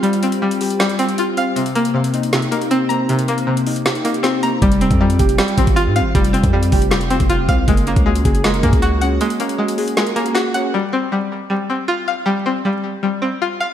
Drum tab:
HH |xxxx-xoxxxxxx-x-|xxxx-xxxxxxxx-x-|xxxx-xoxxxxxx-x-|xxxx-xxxxxxxx-x-|
SD |--------o-------|--------o-------|--------o---o---|--------o-------|
BD |----------------|----------------|----------------|o--o--o---oo----|

HH |xxxx-xoxxxxxx-x-|xxxx-xxxxxxxx-x-|xxxx-xoxxxxxx-x-|----------------|
SD |--------o-------|--------o-------|--------o---o---|----------------|
BD |o--o--o----o--o-|o--o--o---oo----|----------------|----------------|

HH |----------------|
SD |----------------|
BD |----------------|